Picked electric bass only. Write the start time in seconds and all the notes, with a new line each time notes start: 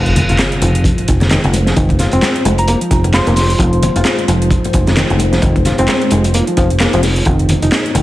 Already playing: F1
0.30 F1
0.62 F1
1.08 F1
1.44 F1
1.77 F1
2.13 F1
2.45 F1
2.91 F1
3.27 F1
3.59 F1
3.96 F1
4.28 F1
4.74 F1
5.10 F1
5.42 F1
5.79 F1
6.12 F1
6.57 F1
6.94 F1
7.26 F1
7.63 F1
7.95 F1